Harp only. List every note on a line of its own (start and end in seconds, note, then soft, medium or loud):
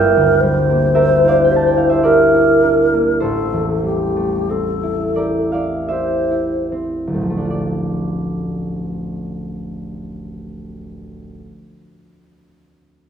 0.00 3.27 G1 medium
0.00 0.42 G3 soft
0.00 1.23 E4 medium
0.00 1.50 G4 medium
0.00 1.27 D5 medium
0.00 0.94 E5 medium
0.00 1.43 G5 medium
0.16 3.27 D2 soft
0.43 3.83 G3 soft
0.70 2.91 A#3 soft
0.95 2.63 D4 medium
0.95 2.03 A#4 medium
0.95 1.88 E5 medium
1.24 1.77 E4 soft
1.24 1.58 F5 medium
1.29 2.02 D5 medium
1.44 1.66 G5 medium
1.51 2.05 G4 soft
1.56 1.75 A5 medium
1.67 1.85 G5 medium
1.77 2.33 E4 soft
1.77 1.99 F5 medium
1.90 3.19 C5 medium
1.90 2.15 E5 medium
2.03 5.17 G4 soft
2.03 3.26 A#4 medium
2.03 3.26 D5 medium
2.34 4.82 E4 soft
2.64 3.28 D4 soft
2.93 3.27 A#3 soft
3.20 7.13 A1 medium
3.20 7.11 A4 medium
3.20 5.88 C5 medium
3.53 7.43 E2 soft
3.84 7.59 G3 soft
4.16 7.12 A3 soft
4.49 6.71 C4 soft
4.83 5.54 E4 soft
5.16 5.90 G4 soft
5.16 7.58 A#4 soft
5.16 5.52 D5 medium
5.52 6.30 E4 soft
5.52 7.49 D5 soft
5.52 6.18 F5 medium
5.88 7.58 G4 soft
5.88 7.57 C5 soft
5.88 7.57 E5 medium
6.31 7.59 E4 soft
6.72 7.59 C4 soft
7.07 11.38 D1 soft
7.13 11.45 A1 soft
7.13 7.29 A3 soft
7.22 11.53 F3 soft
7.30 11.60 A3 soft
7.37 11.68 D4 soft
7.45 11.75 F4 soft
7.51 11.81 D5 soft